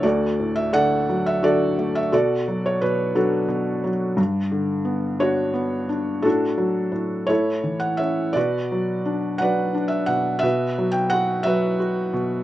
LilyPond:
<<
  \new Staff \with { instrumentName = "Felt piano" } { \time 6/8 \key d \major \tempo 4. = 58 << { d''8. e''16 fis''8. e''16 d''8. e''16 | d''8. cis''16 b'8 a'4 r8 | r4. cis''4. | a'4. cis''8. fis''16 e''8 |
d''4. fis''8. e''16 fis''8 | e''8. g''16 fis''8 e''4. | } \\ { <fis' a'>4 <a' d''>4 <fis' a'>4 | <fis' a'>4. <d' fis'>4. | r4. fis'4. | <d' fis'>4. <e' a'>4. |
<fis' b'>4. <b' d''>4. | b'4. b'4. | } >> }
  \new Staff \with { instrumentName = "Felt piano" } { \clef bass \time 6/8 \key d \major d,8 a,8 d8 fis8 d8 a8 | b,8 fis8 b,8 fis8 b,8 fis8 | g,8 d8 b8 d'8 b8 d'8 | a,8 fis8 a,8 a,8 e8 cis'8 |
b,8 fis8 d'8 fis8 d'8 b,8 | b,8 fis8 fis'8 fis8 fis'8 b,8 | }
>>